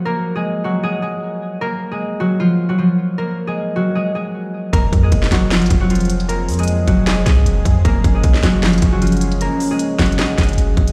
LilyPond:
<<
  \new Staff \with { instrumentName = "Harp" } { \time 4/4 \key f \phrygian \tempo 4 = 154 <bes bes'>8. <aes aes'>8. <ges ges'>8 <aes aes'>8 <aes aes'>4. | <bes bes'>8. <aes aes'>8. <ges ges'>8 <f f'>8. <ges ges'>16 <f f'>4 | <bes bes'>8. <aes aes'>8. <ges ges'>8 <aes aes'>8 <aes aes'>4. | <bes bes'>8. <aes aes'>8. <ges ges'>8 <f f'>8. <ges ges'>16 <f f'>4 |
<bes bes'>8. <aes aes'>8. <ges ges'>8 <aes aes'>8 <aes aes'>4. | <bes bes'>8. <aes aes'>8. <ges ges'>8 <f f'>8. <ges ges'>16 <f f'>4 | <bes bes'>8. <aes aes'>8. <ges ges'>8 <aes aes'>8 <aes aes'>4. | }
  \new Staff \with { instrumentName = "Analog synth pad" } { \time 4/4 \key f \phrygian << { r1 | r1 | r1 | <aes aes'>1~ |
<aes aes'>1~ | <aes aes'>1~ | <aes aes'>1 | } \\ { r1 | r1 | r1 | <f c'>1~ |
<f c'>1 | <des des'>1~ | <des des'>1 | } >> }
  \new Staff \with { instrumentName = "808-style bass" } { \clef bass \time 4/4 \key f \phrygian r1 | r1 | r1 | f,,8 f,8 f,,8 f,,8. aes,,16 f,,4.~ |
f,,8 f,4 f,,4 c,8 f,,8 f,8 | ges,,8 ges,,8 bes,,8 ges,,4 ges,,4.~ | ges,,16 r4 r16 ges,,8 r8 ges,,8 ges,,8 ges,,8 | }
  \new DrumStaff \with { instrumentName = "Drums" } \drummode { \time 4/4 r4 r4 r4 r4 | r4 r4 r4 r4 | r4 r4 r4 r4 | <hh bd>8 <hh bd>8 <hh bd>16 sn16 <hc hh bd sn>8 <hc hh sn>32 hh32 hh32 hh32 <hh bd>8 hh32 hh32 hh32 hh32 hh16 hh16 |
hh8 <hh hho>32 hh32 hh32 hh32 hh8 <hh bd>8 <hc hh sn>8 <hh bd sn>8 hh8 <hh bd>8 | <hh bd>8 <hh bd>8 <hh bd>16 sn16 <hc hh bd sn>8 <hc hh sn>32 hh32 hh32 hh32 <hh bd>8 hh32 hh32 hh32 hh32 hh16 hh16 | hh8 hho8 \tuplet 3/2 { hh16 r16 r16 <hc hh bd sn>16 hh16 hh16 } <hc hh sn>8 <hh bd sn>32 hh32 hh32 hh32 hh8 <hh bd>16 hh16 | }
>>